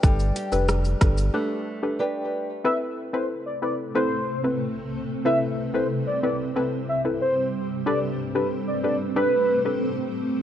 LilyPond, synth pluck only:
\new Staff \with { instrumentName = "Synth pluck" } { \time 4/4 \key a \minor \tempo 4 = 92 <d' g' a' b'>8. <d' g' a' b'>8. <d' g' a' b'>8 <d' g' a' b'>16 r8 <d' g' a' b'>16 r4 | <c' e' a' b'>8. <c' e' a' b'>8. <c' e' a' b'>8 <c' e' a' b'>16 r8 <c' e' a' b'>16 r4 | <c' e' a' b'>8. <c' e' a' b'>8. <c' e' a' b'>8 <c' e' a' b'>16 r8 <c' e' a' b'>16 r4 | <d' g' a' b'>8. <d' g' a' b'>8. <d' g' a' b'>8 <d' g' a' b'>16 r8 <d' g' a' b'>16 r4 | }